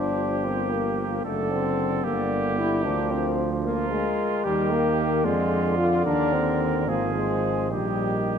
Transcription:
Already playing: G1 F3 D4 G4 C5
0.45 C4 A#4
0.72 A#3
1.24 F#1 D3 A3 A4 D5
1.50 C4
2.04 G1 D3 A#3 G4 D5
2.58 E4
2.85 D2 F3 D4 A#4
3.11 C4
3.64 A#3 F4 A#4
3.91 G#3
4.44 D#2 D#3 G3 G4 A#4
4.71 A#3
5.24 F2 D3 G#3 F4 D5
5.78 F4
6.06 D#2 D4 A#4
6.33 C4
6.87 G#1 F3 A#3 G#4 C5
7.15 G#3
7.71 A#1 D#3 G3 G4 D#5

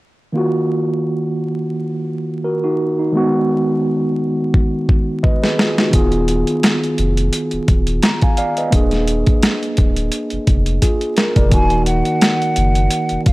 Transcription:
0.32 D#3 A#3 F4
0.37 F#4
2.44 F#4 A#4
2.64 D#4 F#4
2.99 D#4
3.12 D#3 G#3 B3
3.17 F#4
4.54 kick
4.89 kick
5.23 B4 D#5, kick
5.43 G#4 B4, snare
5.58 F4 G#4, snare
5.78 D#4 F#4, snare
5.90 D#1 D#3 B3 F4, kick, closed hi-hat
5.95 G#4
6.12 closed hi-hat
6.28 closed hi-hat
6.47 closed hi-hat
6.63 snare, closed hi-hat
6.84 closed hi-hat
6.98 F1, closed hi-hat
7.17 closed hi-hat
7.33 closed hi-hat
7.51 D#1, closed hi-hat
7.68 D#1, kick, closed hi-hat
7.87 closed hi-hat
8.03 A#5, snare, closed hi-hat
8.22 F5 G#5, kick, closed hi-hat
8.37 D5 F5, closed hi-hat
8.57 B4 D#5, closed hi-hat
8.71 D#1 A#3 D4, kick, closed hi-hat
8.75 G#4
8.91 snare, closed hi-hat
9.07 closed hi-hat
9.26 kick, closed hi-hat
9.43 snare, closed hi-hat
9.63 closed hi-hat
9.77 D1, kick, closed hi-hat
9.96 closed hi-hat
10.12 closed hi-hat
10.30 F1, closed hi-hat
10.47 F1, kick, closed hi-hat
10.66 closed hi-hat
10.82 F4 G#4, kick, closed hi-hat
11.01 closed hi-hat
11.17 A#4, snare, closed hi-hat
11.36 F1 A#4 D5, kick, closed hi-hat
11.49 D#1 D#3 A#3 D#4 G#5, kick, closed hi-hat
11.54 F#4
11.70 closed hi-hat
11.86 F#5, closed hi-hat
12.05 closed hi-hat
12.21 snare, closed hi-hat
12.42 closed hi-hat
12.56 F#1, closed hi-hat
12.75 closed hi-hat
12.90 closed hi-hat
13.09 F1, closed hi-hat
13.26 F1 F5, kick, closed hi-hat

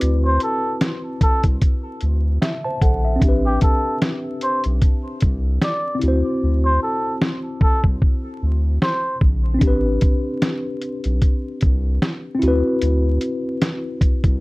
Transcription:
Already playing: C4 E4 F#4 B4
0.01 D2, closed hi-hat
0.25 C5
0.40 A4, closed hi-hat
0.81 snare, closed hi-hat
1.21 A4, kick, closed hi-hat
1.43 C2, kick, closed hi-hat
1.61 kick, closed hi-hat
2.01 D2, closed hi-hat
2.42 E5, snare, closed hi-hat
2.65 C5 A5
2.81 A#1 A4 F#5, kick, closed hi-hat
3.05 E5
3.16 C4 D4
3.21 A1 G4, kick, closed hi-hat
3.28 B4
3.46 G4
3.61 A4, kick, closed hi-hat
4.02 snare, closed hi-hat
4.41 C5, closed hi-hat
4.64 B1, closed hi-hat
4.82 kick, closed hi-hat
5.20 C2, kick, closed hi-hat
5.62 D5, snare, closed hi-hat
5.95 C4
5.99 D2 E4, closed hi-hat
6.03 F#4
6.08 C5
6.43 D2
6.65 C5
6.83 A4
7.22 snare
7.61 A4, kick
7.84 C2, kick
8.02 kick
8.42 D2
8.82 C5, snare
9.21 A#1, kick
9.54 C4
9.59 A1 D4, kick, closed hi-hat
9.63 G4
9.68 B4
10.01 kick, closed hi-hat
10.42 snare, closed hi-hat
10.82 closed hi-hat
11.04 B1, closed hi-hat
11.22 kick, closed hi-hat
11.61 C2, kick, closed hi-hat
12.02 snare, closed hi-hat
12.35 C4
12.39 D2 E4, closed hi-hat
12.43 F#4
12.48 B4
12.82 D2, closed hi-hat
13.21 closed hi-hat
13.62 snare, closed hi-hat
14.01 kick, closed hi-hat
14.24 C2, kick, closed hi-hat

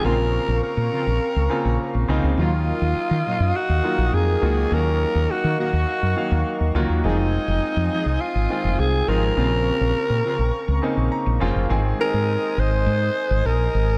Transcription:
Already playing: F3 C#4 G#4 F5
0.04 A#1 C#3 A#3 C4 F4 A#4 A#5 C#6
0.48 A#1
0.63 A#4, muted fretless electric bass stroke
0.77 A#2
0.93 C#3 C4 F4
1.07 A#1
1.36 C#2
1.50 C#3 A#3 C4 F4
1.65 A#1
1.95 A#1
2.08 C2 C#3 A#3 C4 D#4 F4
2.23 C#2
2.37 D#2 A#2 D#3 F#3 A#3 F4 A#4 D#5 D#6
2.81 D#2
2.96 muted fretless electric bass stroke
3.11 D#3
3.26 A#2 F#3 F4
3.40 F#2
3.56 F#4
3.69 D#2
3.83 D#3 F#3 A#3 F4
3.98 A#1
4.13 F2 G#4
4.41 C#2 D#3 F#3 A#3 F4 F#4
4.71 D#2 D#3 F#3 A#3 C#4 F#4 A#4 C#6
5.15 D#2
5.30 F#4, muted fretless electric bass stroke
5.44 D#3
5.59 D#3 A#3 F#4
5.73 D#2
6.02 F#2
6.16 D#3 F#3 A#3 F5
6.31 D#2
6.60 D#2
6.75 C#2 D#3 F#3 A#3 F4 F#4
6.89 D#2
7.04 F1 D#3 F3 G#3 C4 D#4 F4 G#4 G#5 D#6
7.48 F1
7.77 F2
7.92 F3 D#4 G#4
8.06 C2
8.21 F4
8.35 G#1
8.50 D#3 G#3 C4 F4
8.64 F1
8.79 C2 G#4
9.08 G#1 D#3 F3 G#3 C4 D#4 F4 G#4 A#4
9.37 A#1 C#3 A#3 C4 F4 A#5 C#6
9.81 A#1
10.10 A#2
10.25 C#3 C4 F4
10.39 A#1
10.68 C#2
10.82 C#3 A#3 C4 D#4
10.97 A#1
11.12 A#5
11.26 A#1
11.40 F1 C#3 A#3 C4 F4
11.55 F#1
11.69 G#1 D#3 G#3 C4 G#4 C5 D#5 G#5 D#6
11.99 D#3 G#3 C4 G#4 A#4
12.14 G#2
12.57 G#1 C5
12.86 G#2
13.30 G#1
13.45 A#1 A#4
13.74 G#1

